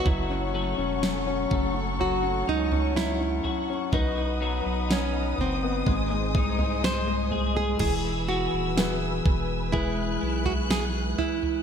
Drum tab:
CC |----------------|----------------|x---------------|
SD |----o-------o---|----o-------o---|----o-------o---|
FT |o-----o-o--o--o-|o-----o-o--o--o-|o-----o-o--o--oo|
BD |o-----o---------|o-------o-o-----|o-----o-o-------|